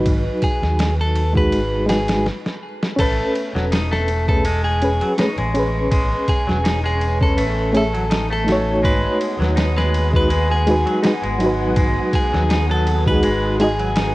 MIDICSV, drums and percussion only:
0, 0, Header, 1, 2, 480
1, 0, Start_track
1, 0, Tempo, 731707
1, 41, Time_signature, 4, 2, 24, 8
1, 9281, End_track
2, 0, Start_track
2, 0, Title_t, "Drums"
2, 38, Note_on_c, 9, 36, 106
2, 38, Note_on_c, 9, 51, 85
2, 103, Note_off_c, 9, 51, 0
2, 104, Note_off_c, 9, 36, 0
2, 275, Note_on_c, 9, 51, 59
2, 278, Note_on_c, 9, 36, 89
2, 341, Note_off_c, 9, 51, 0
2, 343, Note_off_c, 9, 36, 0
2, 415, Note_on_c, 9, 38, 45
2, 480, Note_off_c, 9, 38, 0
2, 518, Note_on_c, 9, 51, 78
2, 525, Note_on_c, 9, 38, 109
2, 584, Note_off_c, 9, 51, 0
2, 590, Note_off_c, 9, 38, 0
2, 758, Note_on_c, 9, 51, 63
2, 823, Note_off_c, 9, 51, 0
2, 888, Note_on_c, 9, 36, 93
2, 954, Note_off_c, 9, 36, 0
2, 999, Note_on_c, 9, 51, 80
2, 1065, Note_off_c, 9, 51, 0
2, 1240, Note_on_c, 9, 51, 83
2, 1246, Note_on_c, 9, 38, 103
2, 1305, Note_off_c, 9, 51, 0
2, 1312, Note_off_c, 9, 38, 0
2, 1365, Note_on_c, 9, 51, 75
2, 1372, Note_on_c, 9, 38, 95
2, 1431, Note_off_c, 9, 51, 0
2, 1437, Note_off_c, 9, 38, 0
2, 1484, Note_on_c, 9, 38, 60
2, 1549, Note_off_c, 9, 38, 0
2, 1613, Note_on_c, 9, 38, 56
2, 1679, Note_off_c, 9, 38, 0
2, 1854, Note_on_c, 9, 38, 84
2, 1920, Note_off_c, 9, 38, 0
2, 1959, Note_on_c, 9, 36, 99
2, 1959, Note_on_c, 9, 49, 89
2, 1959, Note_on_c, 9, 51, 88
2, 2024, Note_off_c, 9, 49, 0
2, 2024, Note_off_c, 9, 51, 0
2, 2025, Note_off_c, 9, 36, 0
2, 2201, Note_on_c, 9, 51, 59
2, 2266, Note_off_c, 9, 51, 0
2, 2338, Note_on_c, 9, 38, 53
2, 2403, Note_off_c, 9, 38, 0
2, 2441, Note_on_c, 9, 51, 84
2, 2448, Note_on_c, 9, 38, 106
2, 2507, Note_off_c, 9, 51, 0
2, 2514, Note_off_c, 9, 38, 0
2, 2575, Note_on_c, 9, 38, 40
2, 2641, Note_off_c, 9, 38, 0
2, 2677, Note_on_c, 9, 51, 66
2, 2742, Note_off_c, 9, 51, 0
2, 2809, Note_on_c, 9, 36, 101
2, 2874, Note_off_c, 9, 36, 0
2, 2917, Note_on_c, 9, 51, 87
2, 2983, Note_off_c, 9, 51, 0
2, 3160, Note_on_c, 9, 51, 69
2, 3225, Note_off_c, 9, 51, 0
2, 3288, Note_on_c, 9, 51, 44
2, 3353, Note_off_c, 9, 51, 0
2, 3398, Note_on_c, 9, 51, 81
2, 3404, Note_on_c, 9, 38, 109
2, 3463, Note_off_c, 9, 51, 0
2, 3470, Note_off_c, 9, 38, 0
2, 3527, Note_on_c, 9, 51, 40
2, 3592, Note_off_c, 9, 51, 0
2, 3639, Note_on_c, 9, 51, 73
2, 3705, Note_off_c, 9, 51, 0
2, 3881, Note_on_c, 9, 36, 109
2, 3881, Note_on_c, 9, 51, 89
2, 3946, Note_off_c, 9, 36, 0
2, 3946, Note_off_c, 9, 51, 0
2, 4119, Note_on_c, 9, 51, 66
2, 4120, Note_on_c, 9, 36, 84
2, 4185, Note_off_c, 9, 51, 0
2, 4186, Note_off_c, 9, 36, 0
2, 4258, Note_on_c, 9, 38, 45
2, 4324, Note_off_c, 9, 38, 0
2, 4363, Note_on_c, 9, 51, 81
2, 4369, Note_on_c, 9, 38, 107
2, 4428, Note_off_c, 9, 51, 0
2, 4435, Note_off_c, 9, 38, 0
2, 4601, Note_on_c, 9, 51, 61
2, 4666, Note_off_c, 9, 51, 0
2, 4729, Note_on_c, 9, 36, 95
2, 4795, Note_off_c, 9, 36, 0
2, 4841, Note_on_c, 9, 51, 85
2, 4906, Note_off_c, 9, 51, 0
2, 5081, Note_on_c, 9, 51, 67
2, 5147, Note_off_c, 9, 51, 0
2, 5212, Note_on_c, 9, 51, 43
2, 5278, Note_off_c, 9, 51, 0
2, 5319, Note_on_c, 9, 51, 89
2, 5326, Note_on_c, 9, 38, 114
2, 5385, Note_off_c, 9, 51, 0
2, 5392, Note_off_c, 9, 38, 0
2, 5562, Note_on_c, 9, 51, 68
2, 5568, Note_on_c, 9, 38, 62
2, 5627, Note_off_c, 9, 51, 0
2, 5634, Note_off_c, 9, 38, 0
2, 5799, Note_on_c, 9, 36, 104
2, 5804, Note_on_c, 9, 51, 82
2, 5865, Note_off_c, 9, 36, 0
2, 5869, Note_off_c, 9, 51, 0
2, 6040, Note_on_c, 9, 51, 67
2, 6106, Note_off_c, 9, 51, 0
2, 6179, Note_on_c, 9, 38, 53
2, 6245, Note_off_c, 9, 38, 0
2, 6278, Note_on_c, 9, 51, 85
2, 6284, Note_on_c, 9, 38, 108
2, 6343, Note_off_c, 9, 51, 0
2, 6350, Note_off_c, 9, 38, 0
2, 6416, Note_on_c, 9, 38, 42
2, 6482, Note_off_c, 9, 38, 0
2, 6523, Note_on_c, 9, 51, 65
2, 6588, Note_off_c, 9, 51, 0
2, 6648, Note_on_c, 9, 36, 96
2, 6714, Note_off_c, 9, 36, 0
2, 6759, Note_on_c, 9, 51, 87
2, 6825, Note_off_c, 9, 51, 0
2, 7000, Note_on_c, 9, 51, 69
2, 7066, Note_off_c, 9, 51, 0
2, 7131, Note_on_c, 9, 51, 45
2, 7196, Note_off_c, 9, 51, 0
2, 7239, Note_on_c, 9, 51, 84
2, 7246, Note_on_c, 9, 38, 103
2, 7305, Note_off_c, 9, 51, 0
2, 7312, Note_off_c, 9, 38, 0
2, 7370, Note_on_c, 9, 51, 42
2, 7436, Note_off_c, 9, 51, 0
2, 7479, Note_on_c, 9, 51, 68
2, 7545, Note_off_c, 9, 51, 0
2, 7716, Note_on_c, 9, 51, 89
2, 7718, Note_on_c, 9, 36, 112
2, 7782, Note_off_c, 9, 51, 0
2, 7784, Note_off_c, 9, 36, 0
2, 7959, Note_on_c, 9, 36, 89
2, 7959, Note_on_c, 9, 51, 64
2, 8024, Note_off_c, 9, 36, 0
2, 8025, Note_off_c, 9, 51, 0
2, 8097, Note_on_c, 9, 38, 49
2, 8163, Note_off_c, 9, 38, 0
2, 8201, Note_on_c, 9, 51, 86
2, 8208, Note_on_c, 9, 38, 115
2, 8267, Note_off_c, 9, 51, 0
2, 8273, Note_off_c, 9, 38, 0
2, 8441, Note_on_c, 9, 51, 65
2, 8507, Note_off_c, 9, 51, 0
2, 8569, Note_on_c, 9, 36, 100
2, 8634, Note_off_c, 9, 36, 0
2, 8677, Note_on_c, 9, 51, 92
2, 8743, Note_off_c, 9, 51, 0
2, 8920, Note_on_c, 9, 51, 68
2, 8985, Note_off_c, 9, 51, 0
2, 9049, Note_on_c, 9, 51, 45
2, 9114, Note_off_c, 9, 51, 0
2, 9155, Note_on_c, 9, 51, 84
2, 9162, Note_on_c, 9, 38, 113
2, 9221, Note_off_c, 9, 51, 0
2, 9227, Note_off_c, 9, 38, 0
2, 9281, End_track
0, 0, End_of_file